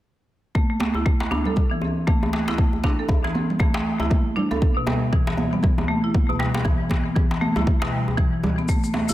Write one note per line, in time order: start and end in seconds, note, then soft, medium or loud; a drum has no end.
0.55 0.69 A3 medium
0.55 kick loud
0.55 high conga medium
0.70 0.79 A3 medium
0.80 muted conga soft
0.80 djembe slap medium
0.80 high conga medium
0.94 1.05 E4 medium
0.94 djembe tone medium
1.06 1.19 A3 medium
1.06 kick loud
1.20 djembe slap medium
1.20 muted conga soft
1.31 1.46 D4 medium
1.31 high conga loud
1.31 djembe tone medium
1.45 1.56 A4 medium
1.45 low conga medium
1.56 kick loud
1.56 muted conga medium
1.56 low conga medium
1.71 1.81 E3 loud
1.71 high conga medium
1.81 1.90 C4 medium
1.81 djembe tone medium
2.07 2.21 A3 medium
2.07 kick loud
2.07 muted conga soft
2.07 high conga medium
2.23 2.32 A3 medium
2.23 djembe tone medium
2.33 djembe slap medium
2.48 2.57 E4 medium
2.48 djembe slap medium
2.48 muted conga medium
2.58 2.72 A3 medium
2.58 kick loud
2.58 high conga medium
2.73 djembe tone medium
2.84 2.98 D4 loud
2.84 kick medium
2.84 djembe slap medium
2.84 muted conga soft
2.84 high conga loud
2.99 3.09 A4 medium
3.09 kick loud
3.09 djembe tone loud
3.24 3.34 E3 medium
3.24 djembe slap medium
3.24 muted conga soft
3.34 3.43 C4 medium
3.34 high conga loud
3.50 low conga medium
3.59 3.74 A3 loud
3.59 kick loud
3.59 muted conga soft
3.59 djembe tone medium
3.74 3.85 A3 medium
3.74 djembe slap loud
4.00 4.10 E4 medium
4.00 djembe tone medium
4.11 4.24 A3 medium
4.11 kick loud
4.11 muted conga soft
4.11 high conga medium
4.11 low conga medium
4.36 4.51 D4 medium
4.36 low conga loud
4.51 4.61 A4 medium
4.51 muted conga soft
4.51 djembe tone medium
4.62 kick loud
4.62 high conga medium
4.77 4.87 B2 loud
4.87 4.95 G3 medium
4.87 muted conga soft
4.87 djembe slap medium
4.87 djembe tone medium
4.87 high conga medium
5.13 5.26 E3 loud
5.13 kick loud
5.27 5.37 E3 medium
5.27 djembe slap medium
5.27 muted conga soft
5.37 djembe tone medium
5.37 high conga loud
5.53 5.62 B3 medium
5.53 low conga medium
5.63 5.77 E3 medium
5.63 kick loud
5.63 muted conga soft
5.63 low conga medium
5.78 djembe tone medium
5.78 high conga medium
5.88 6.03 A3 loud
6.04 6.14 E4 medium
6.14 kick loud
6.14 muted conga soft
6.14 high conga medium
6.29 6.39 B2 loud
6.29 djembe tone medium
6.39 6.48 G3 medium
6.39 djembe slap medium
6.54 djembe slap medium
6.54 muted conga medium
6.65 6.79 E3 loud
6.65 kick loud
6.65 high conga medium
6.65 djembe tone loud
6.80 6.90 E3 medium
6.90 kick medium
6.90 muted conga soft
6.90 djembe slap medium
6.90 high conga medium
7.06 7.15 B3 medium
7.16 7.29 E3 medium
7.16 kick loud
7.16 djembe tone medium
7.31 muted conga soft
7.31 djembe slap medium
7.41 7.56 A3 medium
7.41 high conga loud
7.56 7.66 E4 medium
7.56 djembe tone loud
7.56 low conga medium
7.67 kick loud
7.67 muted conga soft
7.82 7.92 B2 loud
7.82 djembe slap loud
7.92 8.00 G3 medium
8.08 djembe tone medium
8.17 8.31 E3 medium
8.17 kick loud
8.17 muted conga soft
8.17 high conga medium
8.17 low conga medium
8.33 8.42 E3 medium
8.44 djembe tone medium
8.44 low conga loud
8.58 8.67 B3 medium
8.58 muted conga soft
8.69 8.82 A3 loud
8.69 kick loud
8.69 high conga soft
8.69 cabasa medium
8.84 8.93 A3 medium
8.84 cabasa soft
8.94 djembe slap medium
8.94 muted conga soft
8.94 high conga medium
9.09 9.14 E4 medium
9.09 djembe tone medium
9.09 cabasa medium